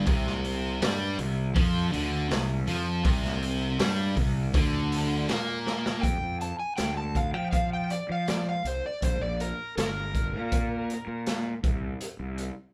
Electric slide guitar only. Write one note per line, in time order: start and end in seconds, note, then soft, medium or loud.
6.02 6.39 G5 medium
6.42 6.59 A5 medium
6.59 6.76 G#5 medium
6.77 6.96 G5 medium
6.97 7.15 A5 medium
7.17 7.34 F5 medium
7.34 7.51 G5 medium
7.51 7.70 F5 medium
7.73 7.91 G5 medium
7.91 8.09 D5 medium
8.12 8.28 F5 medium
8.28 8.46 D5 medium
8.49 8.66 F5 medium
8.67 8.84 C5 medium
8.86 9.03 D5 medium
9.03 9.21 C5 medium
9.21 9.39 D5 medium
9.41 9.77 A#4 medium
9.78 11.23 A#4 medium